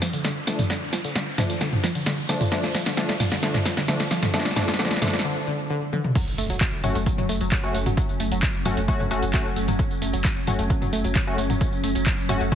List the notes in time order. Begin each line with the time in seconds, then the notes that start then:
Already playing: riser
0.02 F3, snare, open hi-hat, tambourine
0.13 D3, closed hi-hat, tambourine
0.25 D3, snare, closed hi-hat, tambourine
0.47 D3 F3 A3 D4, snare, open hi-hat, tambourine
0.59 F3, closed hi-hat, mid tom, tambourine
0.70 D3, snare, closed hi-hat, tambourine
0.93 F3, snare, open hi-hat, tambourine
1.04 D3, closed hi-hat, tambourine
1.15 D3, snare, closed hi-hat, tambourine
1.38 D3 F3 A3 D4, snare, mid tom, open hi-hat, tambourine
1.50 F3, closed hi-hat, tambourine
1.61 D3, snare, closed hi-hat, tambourine
1.73 mid tom
1.84 F3, snare, open hi-hat, tambourine
1.95 D3, closed hi-hat, tambourine
2.06 D3, snare, closed hi-hat, tambourine
2.29 D3 F3 A3 D4, snare, open hi-hat, tambourine
2.41 F3, closed hi-hat, mid tom, tambourine
2.52 D3 F3 A3 D4, snare, closed hi-hat, tambourine
2.63 snare
2.75 F3, snare, open hi-hat, tambourine
2.86 D3, snare, closed hi-hat, tambourine
2.97 D3 F3 A3 D4, snare, closed hi-hat, tambourine
3.09 snare
3.20 F3, snare, mid tom, open hi-hat, tambourine
3.32 D3, snare, closed hi-hat, tambourine
3.43 D3 F3 A3 D4, snare, closed hi-hat, tambourine
3.54 snare, mid tom
3.65 F3, snare, open hi-hat, tambourine
3.77 D3, snare, closed hi-hat, tambourine
3.88 D3 F3 A3 D4, snare, closed hi-hat, tambourine
4.00 snare
4.11 F3, snare, open hi-hat, tambourine
4.23 D3, snare, closed hi-hat, mid tom, tambourine
4.34 D3 F3 A3 D4, snare, closed hi-hat, tambourine
4.39 snare
4.45 snare
4.51 snare
4.56 D3 F3 A3 D4, snare, mid tom, open hi-hat, tambourine
4.62 snare
4.68 snare, closed hi-hat, tambourine
4.74 snare
4.79 D3 F3 A3 D4, snare, closed hi-hat, tambourine
4.85 snare
4.91 snare
4.96 snare
5.02 D3 F3 A3 D4, snare, mid tom, open hi-hat, tambourine
5.08 snare
5.13 snare, closed hi-hat, tambourine
5.19 snare
5.25 D3
5.47 D3
5.70 D3
5.93 D3, high tom
6.04 mid tom
6.15 F#3 C#4, kick, closed hi-hat, tambourine, crash, impact
6.27 F#1, tambourine
6.38 F#1 A3, open hi-hat, tambourine
6.50 F#1 F#3, closed hi-hat, tambourine
6.61 F#3, kick, clap, closed hi-hat, tambourine
6.73 F#1, tambourine
6.84 F#1 F#3 A3 C#4 F#4, mid tom, open hi-hat, tambourine
6.95 F#1 A3, closed hi-hat, tambourine
7.06 F#3, kick, closed hi-hat, tambourine
7.18 F#1 F#3, mid tom, tambourine
7.29 F#1 A3, open hi-hat, tambourine
7.41 F#1 F#3, closed hi-hat, tambourine
7.52 F#3, kick, clap, closed hi-hat, tambourine
7.63 F#1 A3 C#4 F#4, tambourine
7.74 F#1 A3, open hi-hat, tambourine
7.86 F#1 F#3, closed hi-hat, mid tom, tambourine
7.97 F#3, kick, closed hi-hat, tambourine
8.09 F#1, tambourine
8.20 F#1 A3, open hi-hat, tambourine
8.32 F#1 F#3, closed hi-hat, tambourine
8.43 F#3, kick, clap, closed hi-hat, tambourine
8.54 F#1, tambourine
8.65 F#1 F#3 A3 C#4 F#4, mid tom, open hi-hat, tambourine
8.77 F#1 A3, closed hi-hat, tambourine
8.88 F#3 A3 C#4 F#4, kick, closed hi-hat, tambourine
9.00 F#1 F#3, mid tom, tambourine
9.11 F#1 A3 C#4 F#4, open hi-hat, tambourine
9.23 F#1 F#3, closed hi-hat, tambourine
9.34 F#3 A3 C#4 F#4, kick, clap, closed hi-hat, tambourine
9.45 F#1, tambourine
9.56 F#1 A3, open hi-hat, tambourine
9.68 F#1 F#3, closed hi-hat, mid tom, tambourine
9.79 F#3, kick, closed hi-hat, tambourine
9.91 F#1, tambourine
10.02 F#1 A3, open hi-hat, tambourine
10.13 F#1 F#3, closed hi-hat, tambourine
10.25 F#3, kick, clap, closed hi-hat, tambourine
10.36 F#1, tambourine
10.47 F#1 F#3 A3 C#4 F#4, mid tom, open hi-hat, tambourine
10.59 F#1 A3, closed hi-hat, tambourine
10.70 F#3, kick, closed hi-hat, tambourine
10.82 F#1 F#3, mid tom, tambourine
10.93 F#1 A3, open hi-hat, tambourine
11.04 F#1 F#3, closed hi-hat, tambourine
11.15 F#3, kick, clap, closed hi-hat, tambourine
11.27 F#1 A3 C#4 F#4, tambourine
11.38 F#1 A3, open hi-hat, tambourine
11.50 F#1 F#3, closed hi-hat, mid tom, tambourine
11.61 F#3, kick, closed hi-hat, tambourine
11.73 F#1, tambourine
11.84 F#1 A3, open hi-hat, tambourine
11.95 F#1 F#3, closed hi-hat, tambourine
12.06 F#3, kick, clap, closed hi-hat, tambourine
12.18 F#1, tambourine
12.29 F#1 F#3 A3 C#4 F#4, mid tom, open hi-hat, tambourine
12.41 F#1 A3, closed hi-hat, tambourine
12.52 F#3 A3 C#4 F#4, kick, closed hi-hat, tambourine